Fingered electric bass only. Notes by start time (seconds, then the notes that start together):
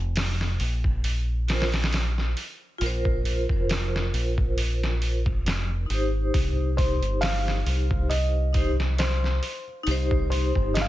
Already playing: F1
0.60 A#1
2.81 A#1
3.50 F1
4.13 A#1
5.46 F1
5.90 G#1
6.34 C2
7.01 G1
7.66 C2
9.87 C2
10.55 G1